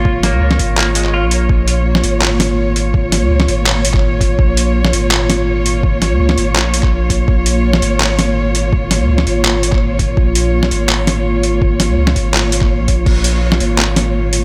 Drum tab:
CC |----------------|----------------|----------------|----------------|
HH |--x---x---x---x-|--x---x---x---x-|--x---x---x---x-|--x---x---x---x-|
CP |--------x--x----|--------x-------|--------x--x----|--------x-------|
SD |--o--o----------|-----o----o-----|--o--o----------|-----o----o-----|
BD |o-----o---------|o---------------|o----------o--o-|o---------------|

CC |----------------|----------------|----------------|----------------|
HH |--x---x---x---x-|--x---x---x---x-|--x---x---x---x-|--x---x---x---x-|
CP |--------x--x----|--------x-------|--------x--x----|--------x-------|
SD |--o--o----------|-----o----o-----|--o--o----------|-----o----o-----|
BD |o----------o--o-|o---------------|o----------o--o-|o---------------|

CC |----------------|x---------------|
HH |--x---x-x-x---x-|--x---x---x---x-|
CP |--------x--x----|--------x-------|
SD |--o--o----------|-----o----o-----|
BD |o-----o----o--o-|o---------------|